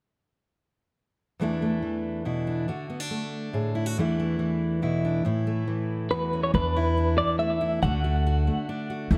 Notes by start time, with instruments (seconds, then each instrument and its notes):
1.40 steel-string acoustic guitar E2 E3 A3 D4 E4
1.62 steel-string acoustic guitar A3
1.82 steel-string acoustic guitar E3
2.25 steel-string acoustic guitar B2 E4
2.47 steel-string acoustic guitar D4
2.68 steel-string acoustic guitar D3 F#4
2.90 steel-string acoustic guitar B3
3.00 steel-string acoustic guitar D4
3.10 steel-string acoustic guitar A3
3.53 steel-string acoustic guitar A2 G#4
3.75 steel-string acoustic guitar E4
3.86 steel-string acoustic guitar F#4
3.98 steel-string acoustic guitar E2 E3 A3 D4 E4
4.20 steel-string acoustic guitar A3
4.39 steel-string acoustic guitar E3
4.82 steel-string acoustic guitar B2 E4
5.05 steel-string acoustic guitar D4
5.25 steel-string acoustic guitar A2 E4
5.47 steel-string acoustic guitar A3
5.67 steel-string acoustic guitar E3
6.10 steel-string acoustic guitar E2 F#4, clean electric guitar B4
6.33 steel-string acoustic guitar C#4
6.43 clean electric guitar C#5
6.54 upright bass E2, steel-string acoustic guitar E2 D4, clean electric guitar B4
6.77 steel-string acoustic guitar E4
6.97 steel-string acoustic guitar D4
7.18 steel-string acoustic guitar E3, clean electric guitar D5
7.39 steel-string acoustic guitar A3, clean electric guitar E5
7.61 steel-string acoustic guitar E4
7.82 upright bass D2, steel-string acoustic guitar D3 A3 D4 F#4, clean electric guitar F#5
8.04 steel-string acoustic guitar F#4
8.27 steel-string acoustic guitar F#4
8.47 steel-string acoustic guitar A3
8.69 steel-string acoustic guitar D4
8.90 steel-string acoustic guitar F#4
9.11 steel-string acoustic guitar E2 E3 A3 D4 E4, upright bass E2